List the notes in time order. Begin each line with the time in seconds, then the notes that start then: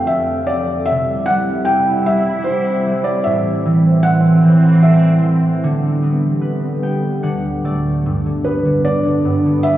Already playing: F2 C3 F3 A3 C4 C5
0.07 E5
0.11 A4
0.47 D5
0.52 C4
0.86 G3 E4 E5
0.91 C3
1.26 F#5
1.30 G3
1.65 G4 G5
2.06 G3 E5
2.44 E4 C5
2.86 G3
3.04 D5
3.24 A2 E3 C4 E5
3.66 E3
4.03 C4 F#5
4.44 E3
4.83 A3 E5
5.24 E3
5.62 D3 G3 B3
6.02 B3
6.41 B4
6.83 B3 G5
7.23 D2 A2 D3 F#3 F#5
7.64 A3 D5
8.04 G2 D3 B3
8.26 D3
8.44 B3 B4
8.65 D3
8.85 D4 D5
9.05 D3
9.25 G2
9.45 D3
9.63 B3 E5